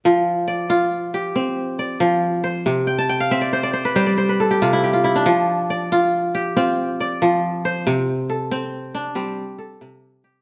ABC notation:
X:1
M:12/8
L:1/16
Q:3/8=92
K:Flyd
V:1 name="Kora"
z4 d6 G6 d6 c2- | c2 g a g f e d c d c B c d c B A G F E G F E D- | D z3 d6 G2 F4 d6 c2- | c2 z2 A6 D2 C4 A6 G2 |]
V:2 name="Kora" clef=bass
F,4 z2 F4 z2 C4 z2 F,4 z2 | C,4 z2 C4 z2 G,4 z2 C,4 z2 | F,4 z2 F4 z2 C4 z2 F,4 z2 | C,4 z2 C4 z2 G,4 z2 C,4 z2 |]